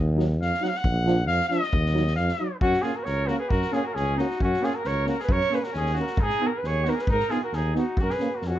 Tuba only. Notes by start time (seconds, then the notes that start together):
Already playing: D#2
0.40 F2
0.85 A#1
1.28 F2
1.74 D#2
2.19 F2
2.63 F#2
3.07 C#2
3.51 F#2
3.96 C#2
4.40 F#2
4.86 C#2
5.29 F#2
5.75 D#2
6.18 G#2
6.63 D#2
7.09 G#2
7.53 D#2
7.97 F#2
8.42 F2